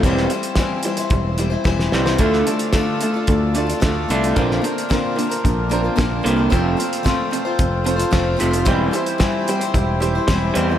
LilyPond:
<<
  \new Staff \with { instrumentName = "Grand piano" } { \time 4/4 \key c \mixolydian \tempo 4 = 111 r1 | <f' a' d''>8 <f' a' d''>4. r8 <f' a' d''>4 r8 | <d' bes' c''>8 <d' bes' c''>4. r8 <d' bes' c''>4 r8 | <f' a' c''>8 <f' a' c''>4. r8 <f' a' c''>4 r8 |
<e' g' c''>8 <e' g' c''>4. r8 <e' g' c''>4 r8 | }
  \new Staff \with { instrumentName = "Accordion" } { \time 4/4 \key c \mixolydian r1 | <d' f' a' d''>1 | <d' f' bes' c''>1 | <c' f' a' c''>1 |
<c' e' g' c''>1 | }
  \new Staff \with { instrumentName = "Steel-string acoustic guitar" } { \time 4/4 \key c \mixolydian <e g c' e' c''>8 <g c' e' c''>8 <e g c' e' c''>8 <g c' e' c''>16 <c' e' c''>8. <g c' e' c''>16 <c' e' c''>16 <e g c' e' c''>8 <g c' e' c''>16 <c' e' c''>16 | <d a d' f' a'>8 <a d' f' a'>8 <d a d' f' a'>8 <a d' f' a'>16 <d' f' a'>8. <a d' f' a'>16 <d' f' a'>16 <d a d' f' a'>8 <a d' f' a'>16 <d' f' a'>16 | <bes, d bes c' f' bes'>8 <bes c' f' bes'>8 <bes, d bes c' f' bes'>8 <bes c' f' bes'>16 <bes c' f' bes'>8. <bes c' f' bes'>16 <bes c' f' bes'>16 <bes, d bes c' f' bes'>8 <bes c' f' bes'>16 <bes c' f' bes'>16 | <f a c' f' c''>8 <a c' f' c''>8 <f a c' f' c''>8 <a c' f' c''>16 <c' f' c''>8. <a c' f' c''>16 <c' f' c''>16 <f a c' f' c''>8 <a c' f' c''>16 <c' f' c''>16 |
<e g c' e' c''>8 <g c' e' c''>8 <e g c' e' c''>8 <g c' e' c''>16 <c' e' c''>8. <g c' e' c''>16 <c' e' c''>16 <e g c' e' c''>8 <g c' e' c''>16 <c' e' c''>16 | }
  \new Staff \with { instrumentName = "Clean electric guitar" } { \clef bass \time 4/4 \key c \mixolydian <e g c'>8 <e g>8 <e g>8 <e g>8 <e g>8 <e g>8 <e g>8 <e g c'>8 | <d a d'>8 <d a>8 <d a>8 <d a>8 <d a>8 <d a>8 <d a>8 <d a d'>8 | <bes, d bes>8 <bes, d>8 <bes, d>8 <bes, d>8 <bes, d>8 <bes, d>8 <bes, d>8 <bes, d bes>8 | <f, c f>8 f,8 <f, c>8 <f, c>8 <f, c>8 <f, c>8 <f, c>8 <f, c f>8 |
<e g c'>8 <e g>8 <e g>8 <e g>8 <e g>8 <e g>8 <e g>8 <e g c'>8 | }
  \new Staff \with { instrumentName = "Picked electric bass" } { \clef bass \time 4/4 \key c \mixolydian e,,8 r4. e,,4 e,,8 c,8 | d,8 r4. d,4 d,8 c,8 | bes,,8 r4. bes,,4 bes,,8 c,8 | f,,8 r4. f,,4 f,,8 f,,8 |
e,,8 r4. e,,4 e,,8 e,8 | }
  \new DrumStaff \with { instrumentName = "Drums" } \drummode { \time 4/4 <hh bd>16 sn16 hh16 hh16 <hh bd sn>8 hh16 hh16 <hh bd>8 hh8 <bd sn>16 sn16 sn16 sn16 | <hh bd>16 sn16 hh16 hh16 <hh bd sn>8 hh8 <hh bd>8 hh16 hh16 <hh bd sn>8 hh16 hh16 | <hh bd>16 sn16 hh16 hh16 <hh bd sn>8 hh16 hh16 <hh bd>8 hh8 <hh bd sn>8 hh8 | <hh bd>8 hh16 hh16 <hh bd sn>8 hh8 <hh bd>8 hh16 hh16 <hh bd sn>8 hh16 hh16 |
<hh bd>8 hh16 hh16 <hh bd sn>8 hh16 hh16 <hh bd>8 hh8 <hh bd sn>8 hh8 | }
>>